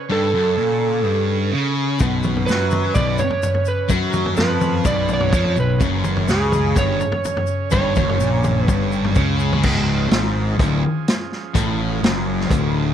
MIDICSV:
0, 0, Header, 1, 6, 480
1, 0, Start_track
1, 0, Tempo, 476569
1, 107, Time_signature, 4, 2, 24, 8
1, 13032, End_track
2, 0, Start_track
2, 0, Title_t, "Electric slide guitar"
2, 0, Program_c, 0, 29
2, 119, Note_on_c, 0, 69, 89
2, 1504, Note_off_c, 0, 69, 0
2, 2482, Note_on_c, 0, 71, 91
2, 2966, Note_on_c, 0, 74, 98
2, 2982, Note_off_c, 0, 71, 0
2, 3192, Note_off_c, 0, 74, 0
2, 3214, Note_on_c, 0, 73, 103
2, 3707, Note_off_c, 0, 73, 0
2, 3708, Note_on_c, 0, 71, 78
2, 3924, Note_off_c, 0, 71, 0
2, 4408, Note_on_c, 0, 71, 90
2, 4856, Note_off_c, 0, 71, 0
2, 4894, Note_on_c, 0, 74, 112
2, 5140, Note_off_c, 0, 74, 0
2, 5171, Note_on_c, 0, 73, 106
2, 5637, Note_on_c, 0, 71, 69
2, 5646, Note_off_c, 0, 73, 0
2, 5849, Note_off_c, 0, 71, 0
2, 6349, Note_on_c, 0, 68, 88
2, 6831, Note_on_c, 0, 73, 107
2, 6836, Note_off_c, 0, 68, 0
2, 7762, Note_off_c, 0, 73, 0
2, 7774, Note_on_c, 0, 73, 105
2, 8721, Note_off_c, 0, 73, 0
2, 8721, Note_on_c, 0, 71, 105
2, 9178, Note_off_c, 0, 71, 0
2, 13032, End_track
3, 0, Start_track
3, 0, Title_t, "Transistor combo organ"
3, 0, Program_c, 1, 18
3, 0, Note_on_c, 1, 49, 65
3, 0, Note_on_c, 1, 73, 73
3, 84, Note_on_c, 1, 61, 59
3, 1975, Note_off_c, 1, 73, 0
3, 2019, Note_on_c, 1, 71, 69
3, 5801, Note_off_c, 1, 61, 0
3, 5816, Note_off_c, 1, 71, 0
3, 5822, Note_on_c, 1, 61, 61
3, 5823, Note_on_c, 1, 73, 75
3, 9646, Note_off_c, 1, 61, 0
3, 9647, Note_off_c, 1, 73, 0
3, 9663, Note_off_c, 1, 49, 0
3, 9695, Note_on_c, 1, 53, 68
3, 9705, Note_on_c, 1, 68, 67
3, 9706, Note_on_c, 1, 61, 57
3, 13032, Note_off_c, 1, 53, 0
3, 13032, Note_off_c, 1, 61, 0
3, 13032, Note_off_c, 1, 68, 0
3, 13032, End_track
4, 0, Start_track
4, 0, Title_t, "Distorted electric guitar"
4, 0, Program_c, 2, 30
4, 94, Note_on_c, 2, 43, 105
4, 332, Note_off_c, 2, 43, 0
4, 340, Note_on_c, 2, 42, 94
4, 574, Note_off_c, 2, 42, 0
4, 578, Note_on_c, 2, 46, 104
4, 1059, Note_off_c, 2, 46, 0
4, 1059, Note_on_c, 2, 43, 103
4, 1530, Note_off_c, 2, 43, 0
4, 1533, Note_on_c, 2, 49, 97
4, 2007, Note_off_c, 2, 49, 0
4, 2013, Note_on_c, 2, 47, 99
4, 2481, Note_on_c, 2, 54, 97
4, 2486, Note_off_c, 2, 47, 0
4, 2959, Note_off_c, 2, 54, 0
4, 2969, Note_on_c, 2, 47, 99
4, 3204, Note_off_c, 2, 47, 0
4, 3913, Note_on_c, 2, 54, 110
4, 4386, Note_on_c, 2, 53, 101
4, 4395, Note_off_c, 2, 54, 0
4, 4872, Note_off_c, 2, 53, 0
4, 4883, Note_on_c, 2, 47, 102
4, 5358, Note_on_c, 2, 53, 98
4, 5361, Note_off_c, 2, 47, 0
4, 5598, Note_off_c, 2, 53, 0
4, 5603, Note_on_c, 2, 47, 71
4, 5800, Note_off_c, 2, 47, 0
4, 5840, Note_on_c, 2, 42, 100
4, 6320, Note_off_c, 2, 42, 0
4, 6324, Note_on_c, 2, 49, 101
4, 6801, Note_on_c, 2, 43, 105
4, 6802, Note_off_c, 2, 49, 0
4, 7041, Note_off_c, 2, 43, 0
4, 7771, Note_on_c, 2, 43, 101
4, 8004, Note_off_c, 2, 43, 0
4, 8008, Note_on_c, 2, 42, 93
4, 8245, Note_off_c, 2, 42, 0
4, 8249, Note_on_c, 2, 46, 105
4, 8727, Note_off_c, 2, 46, 0
4, 8738, Note_on_c, 2, 43, 107
4, 9212, Note_off_c, 2, 43, 0
4, 9213, Note_on_c, 2, 49, 107
4, 9690, Note_off_c, 2, 49, 0
4, 9696, Note_on_c, 2, 37, 105
4, 10171, Note_off_c, 2, 37, 0
4, 10175, Note_on_c, 2, 44, 101
4, 10650, Note_off_c, 2, 44, 0
4, 10654, Note_on_c, 2, 38, 109
4, 10892, Note_off_c, 2, 38, 0
4, 11623, Note_on_c, 2, 45, 110
4, 12097, Note_off_c, 2, 45, 0
4, 12110, Note_on_c, 2, 42, 108
4, 12594, Note_off_c, 2, 42, 0
4, 12594, Note_on_c, 2, 38, 111
4, 13032, Note_off_c, 2, 38, 0
4, 13032, End_track
5, 0, Start_track
5, 0, Title_t, "Fingered electric bass"
5, 0, Program_c, 3, 33
5, 2017, Note_on_c, 3, 35, 83
5, 2462, Note_off_c, 3, 35, 0
5, 2499, Note_on_c, 3, 42, 95
5, 2942, Note_off_c, 3, 42, 0
5, 2983, Note_on_c, 3, 35, 95
5, 3201, Note_off_c, 3, 35, 0
5, 3932, Note_on_c, 3, 42, 86
5, 4378, Note_off_c, 3, 42, 0
5, 4408, Note_on_c, 3, 41, 94
5, 4856, Note_off_c, 3, 41, 0
5, 4885, Note_on_c, 3, 35, 85
5, 5335, Note_off_c, 3, 35, 0
5, 5368, Note_on_c, 3, 41, 85
5, 5593, Note_off_c, 3, 41, 0
5, 5599, Note_on_c, 3, 35, 77
5, 5829, Note_off_c, 3, 35, 0
5, 5849, Note_on_c, 3, 30, 97
5, 6298, Note_off_c, 3, 30, 0
5, 6327, Note_on_c, 3, 37, 97
5, 6777, Note_off_c, 3, 37, 0
5, 6812, Note_on_c, 3, 31, 93
5, 7036, Note_off_c, 3, 31, 0
5, 7785, Note_on_c, 3, 31, 93
5, 8005, Note_off_c, 3, 31, 0
5, 8024, Note_on_c, 3, 30, 85
5, 8244, Note_off_c, 3, 30, 0
5, 8265, Note_on_c, 3, 34, 90
5, 8709, Note_off_c, 3, 34, 0
5, 8749, Note_on_c, 3, 31, 89
5, 9191, Note_off_c, 3, 31, 0
5, 9225, Note_on_c, 3, 37, 85
5, 9670, Note_off_c, 3, 37, 0
5, 9708, Note_on_c, 3, 25, 83
5, 10152, Note_off_c, 3, 25, 0
5, 10184, Note_on_c, 3, 32, 91
5, 10630, Note_off_c, 3, 32, 0
5, 10668, Note_on_c, 3, 26, 92
5, 10889, Note_off_c, 3, 26, 0
5, 11632, Note_on_c, 3, 33, 94
5, 12076, Note_off_c, 3, 33, 0
5, 12112, Note_on_c, 3, 30, 95
5, 12556, Note_off_c, 3, 30, 0
5, 12597, Note_on_c, 3, 26, 92
5, 13032, Note_off_c, 3, 26, 0
5, 13032, End_track
6, 0, Start_track
6, 0, Title_t, "Drums"
6, 2006, Note_on_c, 9, 82, 85
6, 2020, Note_on_c, 9, 36, 105
6, 2020, Note_on_c, 9, 43, 73
6, 2107, Note_off_c, 9, 82, 0
6, 2120, Note_off_c, 9, 36, 0
6, 2121, Note_off_c, 9, 43, 0
6, 2247, Note_on_c, 9, 82, 70
6, 2261, Note_on_c, 9, 43, 72
6, 2261, Note_on_c, 9, 47, 81
6, 2347, Note_off_c, 9, 82, 0
6, 2362, Note_off_c, 9, 43, 0
6, 2362, Note_off_c, 9, 47, 0
6, 2381, Note_on_c, 9, 43, 79
6, 2482, Note_off_c, 9, 43, 0
6, 2501, Note_on_c, 9, 82, 84
6, 2517, Note_on_c, 9, 38, 78
6, 2602, Note_off_c, 9, 82, 0
6, 2617, Note_off_c, 9, 38, 0
6, 2724, Note_on_c, 9, 82, 66
6, 2743, Note_on_c, 9, 43, 79
6, 2743, Note_on_c, 9, 47, 74
6, 2825, Note_off_c, 9, 82, 0
6, 2844, Note_off_c, 9, 43, 0
6, 2844, Note_off_c, 9, 47, 0
6, 2968, Note_on_c, 9, 82, 85
6, 2976, Note_on_c, 9, 36, 104
6, 2983, Note_on_c, 9, 43, 85
6, 3069, Note_off_c, 9, 82, 0
6, 3077, Note_off_c, 9, 36, 0
6, 3083, Note_off_c, 9, 43, 0
6, 3204, Note_on_c, 9, 82, 75
6, 3217, Note_on_c, 9, 43, 73
6, 3305, Note_off_c, 9, 82, 0
6, 3318, Note_off_c, 9, 43, 0
6, 3327, Note_on_c, 9, 43, 88
6, 3428, Note_off_c, 9, 43, 0
6, 3451, Note_on_c, 9, 82, 97
6, 3454, Note_on_c, 9, 43, 90
6, 3552, Note_off_c, 9, 82, 0
6, 3555, Note_off_c, 9, 43, 0
6, 3569, Note_on_c, 9, 43, 73
6, 3670, Note_off_c, 9, 43, 0
6, 3679, Note_on_c, 9, 82, 73
6, 3780, Note_off_c, 9, 82, 0
6, 3920, Note_on_c, 9, 82, 103
6, 3925, Note_on_c, 9, 36, 97
6, 3926, Note_on_c, 9, 43, 77
6, 4021, Note_off_c, 9, 82, 0
6, 4026, Note_off_c, 9, 36, 0
6, 4026, Note_off_c, 9, 43, 0
6, 4159, Note_on_c, 9, 82, 75
6, 4165, Note_on_c, 9, 43, 79
6, 4165, Note_on_c, 9, 47, 74
6, 4260, Note_off_c, 9, 82, 0
6, 4266, Note_off_c, 9, 43, 0
6, 4266, Note_off_c, 9, 47, 0
6, 4288, Note_on_c, 9, 43, 92
6, 4389, Note_off_c, 9, 43, 0
6, 4399, Note_on_c, 9, 82, 102
6, 4419, Note_on_c, 9, 38, 82
6, 4500, Note_off_c, 9, 82, 0
6, 4520, Note_off_c, 9, 38, 0
6, 4645, Note_on_c, 9, 43, 76
6, 4645, Note_on_c, 9, 47, 75
6, 4645, Note_on_c, 9, 82, 75
6, 4746, Note_off_c, 9, 43, 0
6, 4746, Note_off_c, 9, 47, 0
6, 4746, Note_off_c, 9, 82, 0
6, 4884, Note_on_c, 9, 36, 104
6, 4885, Note_on_c, 9, 43, 85
6, 4885, Note_on_c, 9, 82, 99
6, 4985, Note_off_c, 9, 36, 0
6, 4985, Note_off_c, 9, 43, 0
6, 4986, Note_off_c, 9, 82, 0
6, 5122, Note_on_c, 9, 82, 75
6, 5123, Note_on_c, 9, 43, 80
6, 5222, Note_off_c, 9, 82, 0
6, 5224, Note_off_c, 9, 43, 0
6, 5241, Note_on_c, 9, 43, 86
6, 5342, Note_off_c, 9, 43, 0
6, 5361, Note_on_c, 9, 43, 87
6, 5365, Note_on_c, 9, 36, 107
6, 5369, Note_on_c, 9, 82, 94
6, 5462, Note_off_c, 9, 43, 0
6, 5466, Note_off_c, 9, 36, 0
6, 5470, Note_off_c, 9, 82, 0
6, 5483, Note_on_c, 9, 43, 75
6, 5583, Note_off_c, 9, 43, 0
6, 5605, Note_on_c, 9, 82, 75
6, 5706, Note_off_c, 9, 82, 0
6, 5848, Note_on_c, 9, 36, 104
6, 5848, Note_on_c, 9, 43, 80
6, 5849, Note_on_c, 9, 82, 101
6, 5949, Note_off_c, 9, 36, 0
6, 5949, Note_off_c, 9, 43, 0
6, 5950, Note_off_c, 9, 82, 0
6, 6085, Note_on_c, 9, 43, 81
6, 6085, Note_on_c, 9, 47, 79
6, 6087, Note_on_c, 9, 82, 78
6, 6186, Note_off_c, 9, 43, 0
6, 6186, Note_off_c, 9, 47, 0
6, 6187, Note_off_c, 9, 82, 0
6, 6209, Note_on_c, 9, 43, 81
6, 6310, Note_off_c, 9, 43, 0
6, 6328, Note_on_c, 9, 82, 93
6, 6334, Note_on_c, 9, 38, 81
6, 6428, Note_off_c, 9, 82, 0
6, 6435, Note_off_c, 9, 38, 0
6, 6568, Note_on_c, 9, 43, 82
6, 6568, Note_on_c, 9, 47, 77
6, 6575, Note_on_c, 9, 82, 76
6, 6668, Note_off_c, 9, 43, 0
6, 6668, Note_off_c, 9, 47, 0
6, 6676, Note_off_c, 9, 82, 0
6, 6804, Note_on_c, 9, 43, 83
6, 6812, Note_on_c, 9, 36, 110
6, 6814, Note_on_c, 9, 82, 98
6, 6904, Note_off_c, 9, 43, 0
6, 6913, Note_off_c, 9, 36, 0
6, 6914, Note_off_c, 9, 82, 0
6, 7054, Note_on_c, 9, 82, 77
6, 7057, Note_on_c, 9, 43, 75
6, 7155, Note_off_c, 9, 82, 0
6, 7158, Note_off_c, 9, 43, 0
6, 7171, Note_on_c, 9, 43, 93
6, 7271, Note_off_c, 9, 43, 0
6, 7299, Note_on_c, 9, 82, 96
6, 7303, Note_on_c, 9, 43, 89
6, 7400, Note_off_c, 9, 82, 0
6, 7404, Note_off_c, 9, 43, 0
6, 7421, Note_on_c, 9, 43, 84
6, 7521, Note_on_c, 9, 82, 71
6, 7522, Note_off_c, 9, 43, 0
6, 7622, Note_off_c, 9, 82, 0
6, 7763, Note_on_c, 9, 82, 96
6, 7783, Note_on_c, 9, 36, 95
6, 7790, Note_on_c, 9, 43, 88
6, 7863, Note_off_c, 9, 82, 0
6, 7884, Note_off_c, 9, 36, 0
6, 7891, Note_off_c, 9, 43, 0
6, 8011, Note_on_c, 9, 82, 74
6, 8025, Note_on_c, 9, 36, 104
6, 8028, Note_on_c, 9, 47, 79
6, 8111, Note_off_c, 9, 82, 0
6, 8126, Note_off_c, 9, 36, 0
6, 8129, Note_off_c, 9, 47, 0
6, 8151, Note_on_c, 9, 43, 85
6, 8252, Note_off_c, 9, 43, 0
6, 8260, Note_on_c, 9, 82, 90
6, 8361, Note_off_c, 9, 82, 0
6, 8500, Note_on_c, 9, 82, 65
6, 8503, Note_on_c, 9, 43, 84
6, 8503, Note_on_c, 9, 47, 74
6, 8601, Note_off_c, 9, 82, 0
6, 8604, Note_off_c, 9, 43, 0
6, 8604, Note_off_c, 9, 47, 0
6, 8746, Note_on_c, 9, 36, 103
6, 8750, Note_on_c, 9, 43, 84
6, 8751, Note_on_c, 9, 82, 91
6, 8846, Note_off_c, 9, 36, 0
6, 8851, Note_off_c, 9, 43, 0
6, 8852, Note_off_c, 9, 82, 0
6, 8985, Note_on_c, 9, 82, 75
6, 9085, Note_off_c, 9, 82, 0
6, 9109, Note_on_c, 9, 43, 92
6, 9210, Note_off_c, 9, 43, 0
6, 9217, Note_on_c, 9, 82, 90
6, 9226, Note_on_c, 9, 36, 110
6, 9226, Note_on_c, 9, 43, 89
6, 9318, Note_off_c, 9, 82, 0
6, 9327, Note_off_c, 9, 36, 0
6, 9327, Note_off_c, 9, 43, 0
6, 9460, Note_on_c, 9, 82, 63
6, 9560, Note_off_c, 9, 82, 0
6, 9595, Note_on_c, 9, 43, 77
6, 9595, Note_on_c, 9, 47, 82
6, 9696, Note_off_c, 9, 43, 0
6, 9696, Note_off_c, 9, 47, 0
6, 9703, Note_on_c, 9, 49, 108
6, 9707, Note_on_c, 9, 36, 104
6, 9804, Note_off_c, 9, 49, 0
6, 9807, Note_off_c, 9, 36, 0
6, 10185, Note_on_c, 9, 42, 76
6, 10191, Note_on_c, 9, 38, 107
6, 10286, Note_off_c, 9, 42, 0
6, 10292, Note_off_c, 9, 38, 0
6, 10671, Note_on_c, 9, 36, 116
6, 10673, Note_on_c, 9, 42, 70
6, 10772, Note_off_c, 9, 36, 0
6, 10774, Note_off_c, 9, 42, 0
6, 11158, Note_on_c, 9, 42, 68
6, 11164, Note_on_c, 9, 38, 107
6, 11258, Note_off_c, 9, 42, 0
6, 11264, Note_off_c, 9, 38, 0
6, 11403, Note_on_c, 9, 38, 33
6, 11504, Note_off_c, 9, 38, 0
6, 11634, Note_on_c, 9, 36, 104
6, 11636, Note_on_c, 9, 42, 66
6, 11734, Note_off_c, 9, 36, 0
6, 11737, Note_off_c, 9, 42, 0
6, 12125, Note_on_c, 9, 42, 70
6, 12131, Note_on_c, 9, 38, 114
6, 12226, Note_off_c, 9, 42, 0
6, 12232, Note_off_c, 9, 38, 0
6, 12494, Note_on_c, 9, 38, 35
6, 12595, Note_off_c, 9, 38, 0
6, 12595, Note_on_c, 9, 36, 108
6, 12601, Note_on_c, 9, 42, 70
6, 12696, Note_off_c, 9, 36, 0
6, 12701, Note_off_c, 9, 42, 0
6, 13032, End_track
0, 0, End_of_file